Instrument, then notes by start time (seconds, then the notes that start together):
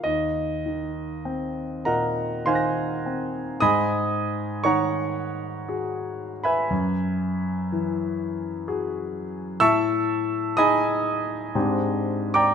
grand piano
0.04 D#2 D#5
0.66 D#3
1.25 C4
1.85 A#2 A#4 D#5 F#5 A#5
2.46 D#3 C5 D#5 F5 G#5 C6
2.50 C6 F#6
2.55 A#6
3.06 C4
3.60 G#2 D#5 G#5 B5 D#6
4.64 D#3 C#5 F#5 A#5 C#6
5.69 F#4 G#4
6.44 B4 E5 G#5 B5
6.70 F#2
7.72 E3
8.68 F#4 G#4
9.60 A2 E5 A5 C#6 E6
10.57 D#4 G#4 D#5 G#5 B5 D#6
11.55 G#2 G#3 C4 D4 G4
12.34 D5 G5 A#5 D6